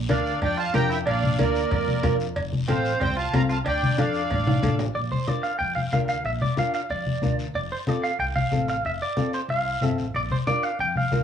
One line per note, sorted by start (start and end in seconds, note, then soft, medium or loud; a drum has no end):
0.08 0.36 D2 medium
0.08 0.32 D4 medium
0.08 0.40 D4 medium
0.08 0.32 F4 medium
0.08 0.32 A#4 medium
0.08 0.40 D5 medium
0.08 0.40 F5 medium
0.08 cowbell medium
0.08 high conga loud
0.08 short guiro medium
0.26 short guiro medium
0.42 0.68 F2 loud
0.42 0.57 D4 medium
0.42 0.57 D5 medium
0.42 0.59 G5 medium
0.42 cowbell medium
0.42 high conga soft
0.42 low conga medium
0.42 long guiro medium
0.57 0.73 F4 medium
0.57 0.73 F5 medium
0.57 0.74 A5 loud
0.73 1.00 F2 medium
0.73 0.97 D4 medium
0.73 0.97 F4 medium
0.73 0.89 G4 medium
0.73 0.97 A#4 medium
0.73 0.89 G5 medium
0.73 0.91 A#5 loud
0.73 cowbell medium
0.73 high conga medium
0.73 low timbale medium
0.73 short guiro medium
0.90 0.95 E4 medium
0.90 0.98 E5 medium
0.90 0.98 G5 medium
0.90 short guiro medium
1.06 1.32 A#1 loud
1.06 1.36 D4 medium
1.06 1.37 D5 medium
1.06 1.40 F5 medium
1.06 cowbell medium
1.06 high conga soft
1.06 long guiro medium
1.23 high conga medium
1.38 1.65 D2 medium
1.38 2.16 A#3 medium
1.38 1.61 D4 medium
1.38 1.61 F4 medium
1.38 1.62 A#4 medium
1.38 2.17 A#4 medium
1.38 2.16 D5 medium
1.38 cowbell medium
1.38 high conga loud
1.38 short guiro medium
1.55 short guiro medium
1.71 1.97 F2 loud
1.71 cowbell medium
1.71 high conga soft
1.71 low conga medium
1.71 long guiro medium
1.88 high conga medium
2.02 2.29 F2 loud
2.02 2.26 D4 medium
2.02 2.26 F4 medium
2.02 2.26 A#4 loud
2.02 cowbell medium
2.02 high conga medium
2.02 low conga medium
2.02 low timbale medium
2.02 short guiro medium
2.20 short guiro medium
2.36 2.62 F1 loud
2.36 cowbell loud
2.36 high conga soft
2.36 long guiro medium
2.52 high conga medium
2.68 2.95 A1 medium
2.68 2.98 C4 medium
2.68 2.91 C4 medium
2.68 2.91 F4 medium
2.68 2.91 A4 medium
2.68 2.99 C5 medium
2.68 3.02 F5 medium
2.68 cowbell medium
2.68 high conga loud
2.68 short guiro medium
2.85 short guiro medium
3.00 3.27 C2 loud
3.00 3.15 C4 medium
3.00 3.16 C5 medium
3.00 3.16 G5 medium
3.00 cowbell medium
3.00 high conga soft
3.00 low conga medium
3.00 long guiro medium
3.17 3.32 F4 medium
3.17 3.33 F5 medium
3.17 3.34 A5 loud
3.33 3.59 C2 medium
3.33 3.56 C4 medium
3.33 3.56 F4 medium
3.33 3.39 F4 medium
3.33 3.56 A4 medium
3.33 3.42 F5 medium
3.33 3.42 A#5 loud
3.33 cowbell medium
3.33 high conga medium
3.33 low timbale medium
3.33 short guiro medium
3.49 3.54 F4 medium
3.49 3.58 F5 medium
3.49 3.58 A5 medium
3.49 short guiro medium
3.65 3.92 D2 medium
3.65 3.95 D4 medium
3.65 3.97 D5 medium
3.65 3.96 G5 medium
3.65 cowbell loud
3.65 high conga soft
3.65 long guiro medium
3.83 high conga medium
3.97 4.24 F2 medium
3.97 4.20 D4 medium
3.97 4.75 D4 medium
3.97 4.21 F4 medium
3.97 4.21 A4 medium
3.97 4.76 D5 medium
3.97 4.76 F5 medium
3.97 cowbell medium
3.97 high conga medium
3.97 short guiro medium
4.14 short guiro medium
4.30 4.57 A1 medium
4.30 cowbell medium
4.30 high conga soft
4.30 low conga medium
4.30 long guiro medium
4.47 high conga medium
4.47 high timbale medium
4.62 4.89 A1 medium
4.62 4.85 D4 medium
4.62 4.85 F4 medium
4.62 4.86 A4 medium
4.62 cowbell medium
4.62 high conga medium
4.62 low conga medium
4.62 short guiro medium
4.79 low timbale medium
4.79 short guiro medium
4.95 5.08 A#1 medium
4.95 5.00 D5 medium
4.95 high conga soft
4.95 long guiro medium
5.12 5.27 C5 medium
5.12 high conga medium
5.27 5.50 D4 medium
5.27 5.50 F4 soft
5.27 5.51 A#4 medium
5.27 5.44 D5 medium
5.27 high conga medium
5.27 short guiro medium
5.43 5.58 F5 medium
5.43 short guiro medium
5.59 5.86 F2 medium
5.59 5.74 G5 medium
5.59 high conga soft
5.59 long guiro medium
5.75 5.80 F5 medium
5.75 high conga medium
5.92 6.18 D2 medium
5.92 6.15 D4 medium
5.92 6.15 F4 medium
5.92 6.16 A#4 medium
5.92 5.98 F5 medium
5.92 high conga medium
5.92 short guiro medium
6.08 6.25 F5 medium
6.08 short guiro medium
6.24 6.38 A#1 medium
6.24 6.31 E5 medium
6.24 high conga soft
6.24 long guiro medium
6.41 6.57 D5 medium
6.41 high conga medium
6.57 6.80 D4 medium
6.57 6.80 F4 medium
6.57 6.80 A#4 medium
6.57 6.73 F5 medium
6.57 high conga medium
6.57 short guiro medium
6.74 6.79 F5 medium
6.74 short guiro medium
6.90 7.16 F2 medium
6.90 7.36 D5 medium
6.90 high conga soft
6.90 long guiro medium
7.06 high conga medium
7.22 7.48 D2 medium
7.22 7.45 D4 medium
7.22 7.45 F4 medium
7.22 7.45 A#4 medium
7.22 high conga medium
7.22 short guiro medium
7.39 short guiro medium
7.54 7.68 F1 medium
7.54 7.60 D5 medium
7.54 high conga soft
7.54 long guiro medium
7.72 7.77 C5 medium
7.87 8.10 C4 medium
7.87 8.10 F4 medium
7.87 8.10 A4 medium
7.87 8.04 D5 medium
7.87 high conga medium
7.87 short guiro medium
8.03 8.19 F5 medium
8.03 short guiro medium
8.19 8.45 C2 medium
8.19 8.25 G5 medium
8.19 high conga soft
8.19 long guiro medium
8.36 8.66 F5 medium
8.36 high conga medium
8.51 8.78 A1 medium
8.51 8.75 C4 medium
8.51 8.75 F4 medium
8.51 8.75 A4 medium
8.51 high conga medium
8.51 short guiro medium
8.68 8.84 F5 medium
8.68 short guiro medium
8.84 8.98 F1 medium
8.84 8.91 E5 medium
8.84 high conga soft
8.84 long guiro medium
9.02 9.34 D5 medium
9.16 9.39 C4 medium
9.16 9.40 F4 medium
9.16 9.40 A4 medium
9.16 high conga medium
9.16 short guiro medium
9.33 9.39 C5 medium
9.33 short guiro medium
9.48 9.75 C2 medium
9.48 9.95 F5 medium
9.48 high conga soft
9.48 long guiro medium
9.81 9.97 G1 medium
9.81 10.05 C4 medium
9.81 10.05 F4 medium
9.81 10.05 A4 medium
9.81 high conga medium
9.81 short guiro medium
9.98 10.13 A1 medium
9.98 short guiro medium
10.14 10.27 A#1 medium
10.14 10.21 D5 medium
10.14 high conga soft
10.14 long guiro medium
10.31 10.37 C5 medium
10.31 high conga medium
10.46 10.69 D4 medium
10.46 10.70 F4 medium
10.46 10.70 A#4 medium
10.46 10.63 D5 medium
10.46 high conga medium
10.46 short guiro medium
10.63 10.79 F5 medium
10.63 short guiro medium
10.79 11.05 F2 medium
10.79 10.97 G5 medium
10.79 high conga soft
10.79 long guiro medium
10.96 11.23 F5 loud
10.96 high conga medium
11.11 11.23 D2 medium
11.11 11.23 D4 medium
11.11 11.23 F4 medium
11.11 11.23 A#4 medium
11.11 high conga medium
11.11 short guiro medium